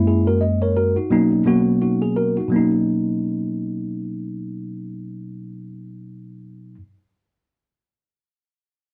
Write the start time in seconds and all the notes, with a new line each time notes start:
Already playing: F#2 G#3 A#3 C#4
0.07 E4 G#4
0.27 F#4 A#4
0.41 D#5
0.62 A#4 C#5
0.77 F#4 A#4
0.96 D#4 F#4
1.10 B2 F#3 A#3 C#4 D#4
1.45 B2 F#3 A#3 C#4 F#4
1.82 D#4 F#4
2.02 G#4
2.16 F#4 A#4
2.37 D#4 F#4
2.48 B2 F#3
2.52 A#3 C#4
2.56 D#4